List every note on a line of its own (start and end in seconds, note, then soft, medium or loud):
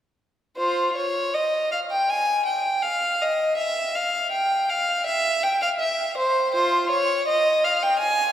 0.57 0.93 F4 medium
0.57 0.93 C5 medium
0.96 1.33 C#5 medium
1.34 1.71 D#5 medium
1.72 1.79 F5 medium
1.91 2.08 G5 medium
2.09 2.45 G#5 medium
2.46 2.81 G5 medium
2.82 3.19 F5 medium
3.21 3.57 D#5 medium
3.57 3.93 E5 medium
3.95 4.31 F5 medium
4.31 4.68 G5 medium
4.69 5.06 F5 medium
5.06 5.42 E5 medium
5.43 5.61 G5 medium
5.62 5.69 F5 medium
5.80 6.16 E5 medium
6.18 6.53 C5 medium
6.54 6.88 F4 medium
6.54 6.89 C5 medium
6.90 7.26 C#5 medium
7.28 7.63 D#5 medium
7.64 7.81 F5 medium
7.82 7.99 G5 medium
7.99 8.32 G#5 medium